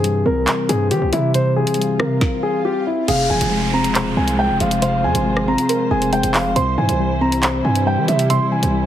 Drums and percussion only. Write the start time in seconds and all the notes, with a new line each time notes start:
0.04 closed hi-hat
0.47 clap, closed hi-hat
0.69 closed hi-hat
0.91 closed hi-hat
1.13 closed hi-hat
1.34 closed hi-hat
1.67 closed hi-hat
1.74 closed hi-hat
1.81 closed hi-hat
2.00 cross-stick
2.21 kick, snare
3.08 closed hi-hat, crash
3.41 closed hi-hat
3.84 closed hi-hat
3.95 clap, closed hi-hat
4.28 closed hi-hat
4.60 closed hi-hat
4.71 closed hi-hat
4.82 closed hi-hat
5.15 closed hi-hat
5.37 cross-stick
5.58 closed hi-hat
5.69 closed hi-hat
6.02 closed hi-hat
6.13 closed hi-hat
6.23 closed hi-hat
6.34 clap, open hi-hat
6.56 closed hi-hat
6.89 closed hi-hat
7.32 closed hi-hat
7.43 clap, closed hi-hat
7.75 closed hi-hat
8.08 closed hi-hat
8.19 closed hi-hat
8.30 closed hi-hat
8.63 closed hi-hat